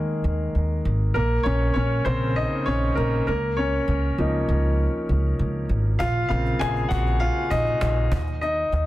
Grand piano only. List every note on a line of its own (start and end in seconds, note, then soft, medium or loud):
0.00 1.18 D#3 soft
0.00 1.17 G#3 medium
0.00 1.16 A#3 medium
0.00 1.17 G#4 medium
0.00 1.14 A#4 medium
1.14 1.44 A#3 medium
1.14 1.43 A#4 medium
1.43 1.74 C#4 medium
1.43 1.72 C#5 medium
1.74 2.04 C#4 medium
1.74 2.06 C#5 medium
2.05 2.46 C#3 soft
2.05 2.46 A#3 soft
2.05 2.35 C4 medium
2.05 2.37 C5 medium
2.36 2.65 D#4 medium
2.36 2.67 D#5 medium
2.66 2.95 C#4 medium
2.66 2.97 C#5 medium
2.95 3.25 A#3 medium
2.95 3.25 A#4 medium
3.27 3.56 A#3 medium
3.27 3.58 A#4 medium
3.57 4.75 C#4 medium
3.57 4.74 C#5 medium
4.18 5.96 F3 soft
4.18 5.96 A#3 soft
4.18 5.97 D#4 medium
5.99 6.29 F4 medium
5.99 6.27 F5 medium
6.29 7.17 C#3 soft
6.29 7.17 A#3 soft
6.29 7.17 C4 soft
6.29 6.59 F4 medium
6.29 6.61 F5 medium
6.59 6.89 G#4 medium
6.59 6.91 G#5 medium
6.89 7.19 F#4 medium
6.89 7.21 F#5 medium
7.20 7.50 F4 medium
7.20 7.52 F5 medium
7.50 8.39 D#4 medium
7.50 8.40 D#5 medium
8.41 8.86 D#4 medium
8.41 8.86 D#5 medium